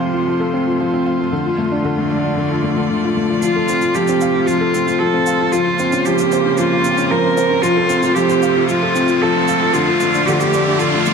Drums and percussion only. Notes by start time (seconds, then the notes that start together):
3.42 shaker
3.69 shaker
3.82 shaker
3.95 shaker
4.08 shaker
4.21 shaker
4.48 shaker
4.74 shaker
4.88 shaker
5.26 shaker
5.53 shaker
5.79 shaker
5.92 shaker
6.06 shaker
6.19 shaker
6.32 shaker
6.58 shaker
6.84 shaker
6.98 shaker
7.37 shaker
7.64 shaker
7.90 shaker
8.03 shaker
8.16 shaker
8.30 shaker
8.43 shaker
8.69 shaker
8.95 shaker
9.08 shaker
9.48 shaker
9.74 shaker
10.00 shaker
10.14 shaker
10.28 shaker
10.40 shaker
10.53 shaker
10.80 shaker
11.06 shaker